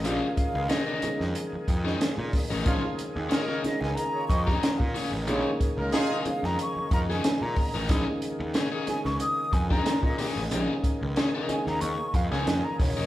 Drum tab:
HH |x-x-x-x-x-x-x-o-|x-x-x-x-x-x-x-o-|x-x-x-x-x-x-x-o-|x-x-x-x-x-x-x-o-|
SD |----o--o---oo-o-|----o-oo---oo-o-|----o--o---oo---|----o-oo---oo-o-|
BD |--o-------o---o-|o---------oo-o--|--o-------o---o-|o---------oo-o--|

HH |x-x-x-x-x-x-x-o-|
SD |----o--o---oo-o-|
BD |--o-------o---o-|